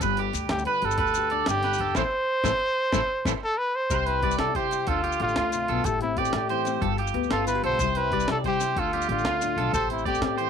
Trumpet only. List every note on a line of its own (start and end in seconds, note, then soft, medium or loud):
0.50 0.65 G4 medium
0.66 0.87 B4 medium
0.85 1.48 A4 medium
1.49 1.93 G4 loud
1.98 3.39 C5 loud
3.44 3.59 A4 loud
3.58 3.77 B4 medium
3.76 4.08 C5 loud
4.06 4.38 B4 medium
4.39 4.57 A4 medium
4.56 4.90 G4 medium
4.88 5.20 F4 medium
5.22 5.87 F4 medium
5.85 6.01 A4 medium
6.02 6.20 E4 medium
6.18 6.34 G4 medium
6.36 6.96 G4 medium
7.32 7.46 A4 medium
7.47 7.62 B4 medium
7.65 7.99 C5 loud
7.97 8.29 B4 loud
8.31 8.38 A4 medium
8.48 8.81 G4 medium
8.79 9.10 F4 medium
9.11 9.70 F4 medium
9.74 9.89 A4 medium
9.91 10.06 E4 medium
10.07 10.21 G4 medium
10.25 10.50 G4 medium